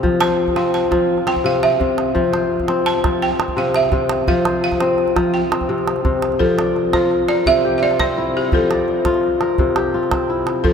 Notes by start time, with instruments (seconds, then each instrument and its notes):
Already playing: kora C4
0.03 kora F3, calabash thump
0.21 kora C5, balafon A5, calabash click
0.48 calabash thump
0.56 kora C4, balafon F5, calabash click
0.74 balafon A5, calabash click
0.91 kora F3, calabash thump, calabash click
1.18 calabash click
1.27 kora C4, balafon G5, calabash click
1.36 calabash thump
1.44 kora C3, balafon F5
1.63 balafon E5, calabash click
1.72 calabash click
1.80 kora C3, calabash thump
1.98 calabash click
2.15 kora F3, calabash thump
2.33 kora C5, calabash click
2.60 calabash thump
2.68 kora C4, calabash click
2.86 balafon A5, calabash click
3.04 kora F3, calabash thump, calabash click
3.22 balafon G5
3.31 calabash click
3.39 kora C4, calabash click
3.48 calabash thump
3.57 kora C3, balafon F5
3.74 balafon E5, calabash click
3.83 calabash click
3.92 kora C3, calabash thump, calabash click
4.09 calabash click
4.28 kora F3, balafon F5, calabash thump
4.45 kora C5, calabash click
4.64 balafon F5
4.72 calabash thump, calabash click
4.80 kora C4, calabash click
4.98 calabash click
5.08 calabash click
5.16 kora F3, calabash thump, calabash click
5.34 balafon G5, calabash click
5.52 kora C4, calabash click
5.61 calabash thump
5.69 kora C3
5.78 calabash click
5.88 calabash click
5.96 calabash click
6.05 kora C3, calabash thump, calabash click
6.22 calabash click
6.32 calabash click
6.39 kora F3, balafon A4, calabash thump
6.58 kora D5, calabash click
6.76 calabash click
6.93 kora F4, balafon C5, calabash thump, calabash click
7.11 calabash click
7.28 kora A#4, balafon D5, calabash click
7.46 kora C3, balafon E5, calabash thump
7.65 kora G4
7.78 balafon E5
7.82 kora F4, balafon D5
7.91 calabash click
8.00 kora C4, balafon C5, calabash thump, calabash click
8.17 kora E4
8.37 balafon G4
8.52 kora F3, balafon A4, calabash thump
8.71 kora D5, calabash click
8.88 calabash click
9.05 kora F4, calabash thump, calabash click
9.14 calabash click
9.23 calabash click
9.41 kora A#4, calabash click
9.58 kora C3, calabash thump
9.76 kora G4, calabash click
9.94 kora F4
10.03 calabash click
10.11 kora C4, calabash thump, calabash click
10.30 kora E4
10.47 calabash click
10.64 kora F3, balafon A4, calabash thump